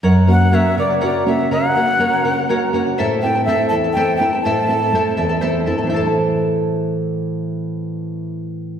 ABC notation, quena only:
X:1
M:6/8
L:1/8
Q:3/8=82
K:Ador
V:1 name="Quena"
z f e d d e | f4- f z | z g e a g g | a4 z2 |
z6 | z6 |]